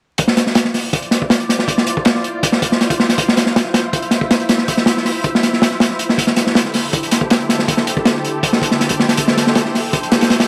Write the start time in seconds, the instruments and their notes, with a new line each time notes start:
0.18 string machine E4 F4 C5 D5, kick, closed hi-hat
0.28 snare
0.37 snare, closed hi-hat
0.47 snare
0.55 snare, closed hi-hat
0.65 snare
0.74 snare, open hi-hat
0.93 kick, closed hi-hat
1.02 closed hi-hat
1.11 snare, closed hi-hat
1.22 kick
1.30 snare, closed hi-hat
1.40 closed hi-hat
1.49 snare, closed hi-hat
1.59 snare
1.68 kick, closed hi-hat
1.78 snare
1.87 closed hi-hat
1.97 kick
2.05 snare, closed hi-hat
2.15 snare
2.24 closed hi-hat
2.43 kick, closed hi-hat
2.52 snare
2.62 kick, closed hi-hat
2.72 snare
2.81 snare, closed hi-hat
2.90 kick, closed hi-hat
3.00 snare
3.09 snare, closed hi-hat
3.18 string machine E5, kick, closed hi-hat
3.28 snare
3.37 snare, closed hi-hat
3.46 snare
3.56 snare, closed hi-hat
3.65 snare
3.74 snare, closed hi-hat
3.93 kick, closed hi-hat
4.02 closed hi-hat
4.11 snare, closed hi-hat
4.21 kick
4.31 snare, closed hi-hat
4.40 closed hi-hat
4.49 snare, closed hi-hat
4.58 snare
4.68 kick, closed hi-hat
4.77 snare
4.86 snare, closed hi-hat
4.97 snare
5.05 snare, open hi-hat
5.24 kick, closed hi-hat
5.35 snare
5.43 snare, closed hi-hat
5.53 snare
5.62 snare, closed hi-hat
5.71 snare
5.80 snare, closed hi-hat
5.91 snare
5.99 closed hi-hat
6.09 snare
6.18 string machine D3 G4 A4 C5, kick, closed hi-hat
6.27 snare
6.36 snare, closed hi-hat
6.47 snare
6.55 snare, closed hi-hat
6.65 snare
6.74 snare, open hi-hat
6.93 kick, closed hi-hat
7.03 closed hi-hat
7.11 snare, closed hi-hat
7.21 kick
7.30 snare, closed hi-hat
7.40 closed hi-hat
7.49 snare, closed hi-hat
7.59 snare
7.68 kick, closed hi-hat
7.77 snare
7.87 closed hi-hat
7.97 kick
8.05 snare, closed hi-hat
8.15 snare
8.25 closed hi-hat
8.43 kick, closed hi-hat
8.53 snare
8.62 kick, closed hi-hat
8.71 snare
8.80 snare, closed hi-hat
8.89 kick, closed hi-hat
8.99 snare
9.08 snare, closed hi-hat
9.17 kick, closed hi-hat
9.28 snare
9.37 snare, closed hi-hat
9.47 snare
9.55 snare, closed hi-hat
9.65 snare
9.75 snare, open hi-hat
9.93 kick, closed hi-hat
10.03 closed hi-hat
10.12 snare, closed hi-hat
10.21 snare, closed hi-hat
10.30 snare, closed hi-hat
10.40 snare, closed hi-hat